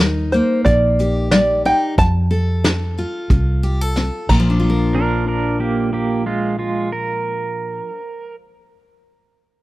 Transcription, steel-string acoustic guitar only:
Already playing: D#4
0.00 G3
0.34 A#3
0.67 A#2
1.00 G4
1.33 G3
1.65 D#4
1.98 F3
2.31 A4
2.64 C4
2.99 F4
3.30 C3
3.63 G4
3.81 A4
3.97 C4
4.29 A#2
4.40 F3
4.50 D4
4.60 F4
4.70 A#4

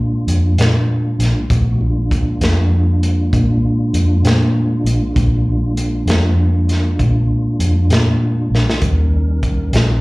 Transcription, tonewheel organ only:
Already playing: G#3 A#3 D4 F4
1.50 A3 B3 D#4 F#4
1.81 G#3 A#3 D4 F4
5.14 G#3 A#3 D4 F4
8.81 G3 C#4 D#4 A#4

